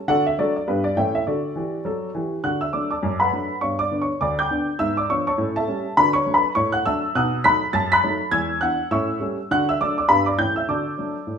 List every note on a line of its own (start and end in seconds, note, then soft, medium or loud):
0.08 0.33 D3 medium
0.08 0.26 F#4 medium
0.08 0.25 A4 medium
0.08 0.25 D5 medium
0.08 0.23 F#5 loud
0.27 0.36 E5 medium
0.39 0.55 F#3 soft
0.39 0.55 A3 soft
0.39 0.55 D4 soft
0.39 0.56 F#4 medium
0.39 0.55 A4 medium
0.39 0.53 D5 medium
0.56 0.66 D5 medium
0.67 0.93 G2 medium
0.67 0.84 G3 soft
0.67 0.85 B3 soft
0.67 0.84 D4 medium
0.67 0.84 G4 medium
0.67 0.83 B4 medium
0.84 0.95 D5 medium
0.97 1.22 A2 medium
0.97 1.13 E3 soft
0.97 1.13 A3 soft
0.97 1.15 C#4 soft
0.97 1.14 C#5 medium
0.97 1.13 E5 medium
0.97 1.12 G5 medium
1.15 1.25 E5 medium
1.27 1.50 D3 medium
1.27 2.29 F#4 medium
1.27 1.84 A4 medium
1.27 2.17 D5 medium
1.56 1.79 E3 medium
1.56 1.80 G4 soft
1.85 2.08 F#3 medium
1.85 2.09 A4 medium
2.15 2.38 E3 medium
2.15 2.39 G4 soft
2.44 2.69 D3 medium
2.44 2.62 F#4 soft
2.44 2.61 F#5 medium
2.44 2.59 F#6 medium
2.61 2.73 E5 soft
2.61 2.71 E6 medium
2.73 2.89 F#3 soft
2.73 2.90 A3 soft
2.73 2.90 D4 soft
2.73 2.90 D5 soft
2.73 2.88 D6 medium
2.91 3.18 D5 soft
2.91 3.19 A5 soft
2.91 3.16 D6 medium
3.03 3.28 F#2 medium
3.20 3.59 B4 medium
3.20 3.59 F#5 medium
3.20 3.55 B5 medium
3.32 3.48 F#3 soft
3.32 3.49 A3 soft
3.32 3.49 D4 soft
3.61 3.86 G2 medium
3.61 3.79 B3 soft
3.61 3.78 C#5 soft
3.61 3.76 C#6 medium
3.79 3.99 D5 medium
3.79 3.97 D6 medium
3.91 4.07 D3 soft
3.91 4.08 B3 soft
3.91 4.08 D4 soft
4.02 4.20 C#5 soft
4.02 4.18 C#6 medium
4.21 4.46 D2 medium
4.21 4.38 D5 medium
4.21 4.36 D6 medium
4.39 4.66 G5 medium
4.39 4.66 D6 medium
4.39 4.64 G6 medium
4.51 4.67 D3 soft
4.51 4.67 B3 soft
4.51 4.68 D4 soft
4.79 5.04 G#2 medium
4.79 4.96 B3 soft
4.79 4.96 E5 medium
4.79 4.94 E6 medium
4.97 5.09 D5 soft
4.97 5.07 D6 medium
5.10 5.25 F3 soft
5.10 5.26 B3 soft
5.10 5.26 D4 soft
5.10 5.26 C#5 medium
5.10 5.24 C#6 medium
5.27 5.55 C#5 medium
5.27 5.54 A5 medium
5.27 5.52 C#6 medium
5.38 5.63 A2 medium
5.38 5.56 C#4 soft
5.56 5.95 A4 medium
5.56 5.95 E5 medium
5.56 5.91 A5 medium
5.67 5.84 G3 soft
5.67 5.84 A3 soft
5.67 5.84 C#4 soft
5.97 6.22 D3 medium
5.97 6.15 F#4 medium
5.97 6.14 B4 medium
5.97 6.12 B5 medium
6.13 6.34 C#5 medium
6.13 6.31 C#6 medium
6.26 6.42 F#3 soft
6.26 6.43 A3 soft
6.26 6.43 D4 soft
6.34 6.54 B4 medium
6.34 6.52 B5 medium
6.55 6.81 A2 medium
6.55 6.73 C#5 medium
6.55 6.70 C#6 medium
6.72 6.85 F#5 medium
6.72 6.83 F#6 medium
6.86 7.02 F#3 soft
6.86 7.02 A3 soft
6.86 7.02 D4 medium
6.86 7.13 E5 medium
6.86 7.13 A5 medium
6.86 7.11 E6 medium
7.15 7.40 B2 medium
7.15 7.32 D#4 medium
7.15 7.43 F#5 medium
7.15 7.43 D#6 medium
7.15 7.40 F#6 medium
7.44 7.61 F#3 soft
7.44 7.61 A3 soft
7.44 7.61 D#4 medium
7.44 7.72 B5 medium
7.44 7.72 F#6 medium
7.44 7.69 B6 medium
7.73 7.99 F#2 medium
7.73 7.91 A5 medium
7.73 7.88 A6 medium
7.92 8.31 B5 medium
7.92 8.31 F#6 medium
7.92 8.27 B6 loud
8.04 8.20 F#3 medium
8.04 8.20 A3 soft
8.04 8.20 D#4 soft
8.31 8.57 E2 medium
8.31 8.50 G#3 soft
8.31 8.60 G#5 medium
8.31 8.60 E6 medium
8.31 8.57 G#6 loud
8.61 8.77 E3 soft
8.61 8.78 B3 soft
8.61 8.78 D4 soft
8.61 8.90 F#5 medium
8.61 8.86 F#6 medium
8.91 9.16 A2 medium
8.91 9.09 C#4 medium
8.91 9.19 E5 medium
8.91 9.19 C#6 medium
8.91 9.16 E6 medium
9.20 9.36 G3 soft
9.20 9.37 A3 soft
9.20 9.37 C#4 soft
9.51 9.76 D3 medium
9.51 9.68 F#4 soft
9.51 9.68 F#5 medium
9.51 9.66 F#6 medium
9.69 9.80 E5 medium
9.69 9.79 E6 medium
9.81 9.97 F#3 soft
9.81 9.97 A3 soft
9.81 9.98 D4 soft
9.81 9.98 D5 medium
9.81 9.96 D6 medium
9.98 10.10 D5 medium
9.98 10.08 D6 medium
10.08 10.34 G2 medium
10.08 10.25 G3 soft
10.08 10.27 B3 soft
10.08 10.26 D4 soft
10.08 10.26 B4 medium
10.08 10.24 B5 medium
10.26 10.38 D5 medium
10.26 10.37 D6 medium
10.38 10.64 A2 medium
10.38 10.55 E3 soft
10.38 10.55 A3 soft
10.38 10.56 C#4 soft
10.38 10.56 G5 medium
10.38 10.54 G6 medium
10.56 10.68 E5 medium
10.56 10.66 E6 medium
10.69 10.94 D3 medium
10.69 10.86 F#4 soft
10.69 11.38 D5 soft
10.69 11.38 A5 soft
10.69 11.38 D6 medium
10.98 11.14 F#3 soft
10.98 11.14 A3 soft
10.98 11.15 D4 soft
11.27 11.38 A2 soft